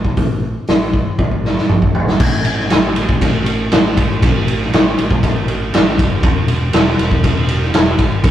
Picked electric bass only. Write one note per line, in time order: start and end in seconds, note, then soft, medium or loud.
0.00 0.12 A1 medium
0.17 0.55 A1 medium
0.69 1.07 A1 medium
1.18 1.56 A1 medium
1.70 1.89 A1 medium
1.95 2.20 A1 medium
2.20 2.44 A1 loud
2.46 2.69 A1 medium
2.71 2.95 A1 medium
2.96 3.20 A1 loud
3.21 3.68 A1 medium
3.72 3.95 A1 medium
3.97 4.20 A1 medium
4.22 4.69 A1 medium
4.73 4.96 A1 medium
4.98 5.21 A1 medium
5.23 5.46 A1 loud
5.48 5.72 A1 medium
5.73 5.96 A1 medium
5.98 6.22 F1 medium
6.23 6.47 E1 loud
6.48 6.72 E1 medium
6.73 6.97 E1 medium
6.98 7.22 E1 medium
7.23 7.70 E1 loud
7.73 7.97 E1 medium
7.98 8.22 G#1 medium
8.24 8.31 G1 medium